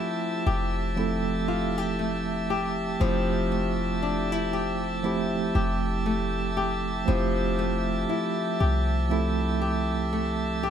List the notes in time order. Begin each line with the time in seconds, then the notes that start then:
Already playing: F3 A3 C4 E4 G4 E5 A5
0.46 F1 G4
0.96 F3 A3 C4 E4 A4
1.48 F4
1.78 G4
1.99 A3
2.50 G4
2.99 F1 F3 A3 C4 E4 G4
3.52 A3
4.03 D4
4.32 E4
4.53 G4
5.03 F3 A3 C4 E4 G4
5.55 F1 G4
6.06 A3
6.57 G4
7.06 F1 F3 A3 C4 E4 G4
7.59 A3
8.09 E4
8.60 C2 G4
9.09 F3 A3 C4 E4 A4
9.62 G4
10.13 A3
10.63 G4